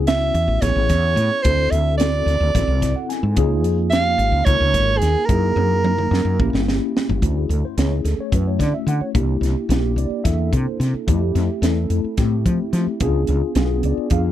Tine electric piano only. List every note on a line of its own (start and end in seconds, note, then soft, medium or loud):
0.06 0.58 B3 medium
0.06 0.59 C#4 medium
0.06 0.59 E4 medium
0.06 0.59 F#4 medium
0.62 1.44 B3 medium
0.62 1.45 C#4 medium
0.62 1.44 E4 medium
0.62 1.45 G#4 medium
1.44 1.96 C4 medium
1.44 1.96 E4 medium
1.44 1.97 F#4 medium
1.44 1.97 A4 medium
1.99 2.51 C4 medium
1.99 2.51 E4 medium
1.99 2.51 F#4 medium
1.99 2.52 A4 medium
2.55 3.37 C4 medium
2.55 3.37 E4 medium
2.55 3.37 F#4 medium
2.55 3.38 A4 medium
2.82 2.95 D5 medium
2.96 3.09 F#5 medium
3.09 3.35 G#5 medium
3.36 3.88 A#3 loud
3.36 3.88 D#4 medium
3.36 3.89 F4 medium
3.36 3.89 G#4 loud
3.91 4.43 A#3 medium
3.91 4.44 F4 medium
4.46 5.27 A#3 medium
4.46 5.28 D#4 medium
4.46 5.29 F4 medium
4.46 5.30 A#4 medium
5.28 5.81 A#3 medium
5.28 5.81 D#4 medium
5.28 5.81 E4 medium
5.28 5.81 G#4 medium
5.84 6.36 A#3 medium
5.84 6.36 D#4 medium
5.84 6.36 E4 medium
5.84 6.37 A#4 medium
6.39 7.22 A#3 medium
6.39 7.21 C#4 medium
6.39 7.21 E4 medium
6.39 7.22 G4 medium
7.22 7.74 A3 medium
7.22 7.74 C#4 medium
7.22 7.74 E4 medium
7.22 7.74 F#4 medium
7.37 7.50 G#4 medium
7.50 7.63 A4 medium
7.65 7.77 C5 medium
7.78 8.29 A3 medium
7.78 8.29 C#4 medium
7.78 7.91 E4 medium
7.78 8.30 G#4 medium
7.78 7.92 C#5 medium
7.93 8.05 E4 soft
8.05 8.18 A4 medium
8.20 8.33 C#5 medium
8.31 9.14 A3 medium
8.31 9.15 C#4 medium
8.31 9.14 E4 medium
8.31 9.15 F#4 medium
8.31 8.47 B4 medium
8.47 8.60 C#5 medium
8.59 8.73 D5 medium
8.74 8.87 E5 medium
8.89 9.01 F#5 medium
9.01 9.10 C#5 medium
9.14 9.66 A#3 medium
9.14 9.67 D4 medium
9.14 9.67 E4 medium
9.14 9.67 G4 medium
9.69 10.21 A#3 medium
9.69 10.22 D4 medium
9.69 10.22 E4 medium
9.69 10.22 G4 medium
9.98 10.25 D5 medium
10.24 11.07 A#3 medium
10.24 11.08 D4 medium
10.24 11.07 E4 medium
10.24 11.08 A4 medium
10.24 10.51 E5 medium
10.54 10.80 C5 medium
11.07 11.59 A3 loud
11.07 11.59 C4 medium
11.07 11.60 E4 medium
11.07 11.60 G4 loud
11.62 12.14 A3 medium
11.62 12.14 C4 medium
11.62 12.15 E4 medium
11.62 12.15 A4 medium
12.17 13.00 A3 medium
12.17 13.01 C4 medium
12.17 13.01 E4 medium
12.17 13.01 G4 medium
13.00 13.52 B3 medium
13.00 13.53 D4 medium
13.00 13.53 F4 medium
13.00 13.53 G#4 loud
13.55 14.07 B3 medium
13.55 14.08 D4 medium
13.55 14.08 F4 medium
13.55 14.08 G#4 medium
13.85 14.11 D5 medium
14.10 14.32 B3 medium
14.10 14.32 D4 medium
14.10 14.32 F4 medium
14.10 14.32 G#4 medium
14.10 14.32 F5 loud